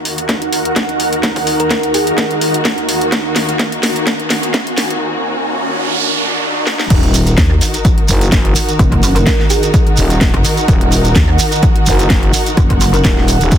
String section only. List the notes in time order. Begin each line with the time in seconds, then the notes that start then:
Already playing: D#2 D#3 A#3 F#4
6.90 D#3 D#4 F#4 A#4